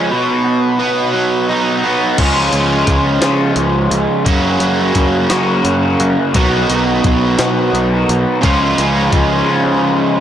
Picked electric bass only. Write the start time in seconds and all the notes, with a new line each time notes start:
2.19 C#2
2.53 C#2
2.87 C#2
3.21 C#3
3.56 C#2
3.90 C#2
4.26 F#2
4.60 F#2
4.95 F#2
5.31 F#3
5.65 F#2
6.00 F#2
6.34 B1
6.70 B1
7.04 B1
7.39 B2
7.73 B1
8.09 B1
8.43 C#2
8.78 C#2
9.12 C#2